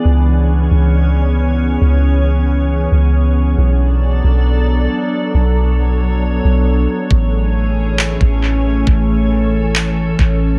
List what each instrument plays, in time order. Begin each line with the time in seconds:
Already playing: ambient pad E3 B3 G#4
0.04 808-style bass C#2, ambient pad C#4 C#5
0.71 808-style bass C#2
1.81 808-style bass C#2
2.92 808-style bass C#2
3.58 808-style bass B1, ambient pad F#3 D4 A4 D5
4.24 808-style bass B1
5.34 808-style bass B1, ambient pad C#5
6.44 808-style bass B1
7.11 808-style bass A1, ambient pad E3 A3 C#4 G#4 C#5, kick
7.99 clap
8.21 808-style bass A1, kick
8.87 808-style bass A1, ambient pad A4, kick
9.75 clap
10.19 808-style bass A1, kick